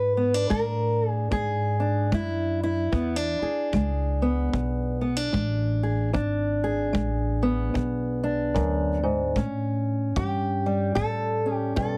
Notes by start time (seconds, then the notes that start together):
Already playing: E2 G#2 B4
0.17 B3
0.34 D4
0.50 A2 G#3 A#4, kick
1.09 G#4
1.31 E2 G#2 G#4, kick
1.80 D4
2.12 F#2 G#3 E4, kick
2.63 E4
2.92 E2 B3, kick
3.16 D4
3.41 G#4, muted upright bass stroke
3.73 C#2 G#3, kick
4.22 B3
4.53 B1 E2, kick
5.01 B3
5.17 D4
5.33 A1 G#3, kick
5.83 G#4
6.13 G#1 E2 D4, kick
6.64 G#4
6.93 A1 G#3, kick
7.43 B3
7.74 B1 E2, kick
8.24 D4
8.54 D2 F#2, kick
9.03 G#2
9.36 A2 C#4, kick
10.16 G2 E3 G4, kick
10.66 G3
10.95 E2 A2 A4, kick
11.46 C#4
11.54 G4
11.76 G2 B2 A4, kick